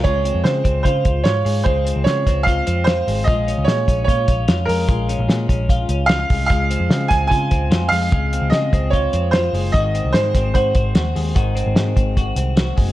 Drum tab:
HH |xxxxxxxo|xxxxxxxo|xxxxxxxo|xxxxxxxo|
SD |--o---o-|--oo--o-|--o---o-|--o---o-|
BD |o--ooo--|o--oo---|o--ooo--|o--oo--o|

HH |xxxxxxxo|xxxxxxxo|xxxxxxxo|xxxxxxxo|
SD |--oo--o-|--o---o-|--oo--o-|--o---o-|
BD |o--ooo--|o--oo---|o--ooo--|o--oo--o|